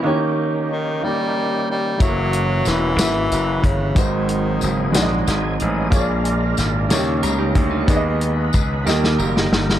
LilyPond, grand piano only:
<<
  \new Staff \with { instrumentName = "Grand piano" } { \time 6/8 \key gis \minor \tempo 4. = 61 <ais dis' g' cis''>4 r8 <ais dis' g' ais'>4 r8 | <a ais e' fis' cis''>4 r8 <ais e' fis' e''>4 r8 | <gis dis' fis' bis'>4 r8 <gis dis' fis' d'' dis''>4 r8 | <ais eis' gis' cis'' d''>4 r8 <ais dis' e' g' cis''>4 r8 |
<b dis' gis' d'' dis''>4 r8 <ais dis' g' dis''>4 r8 | }
  \new Staff \with { instrumentName = "Grand piano" } { \clef bass \time 6/8 \key gis \minor dis4. r4. | r2. | gis,4. r4. | ais,4. cis4. |
dis4. dis4. | }
>>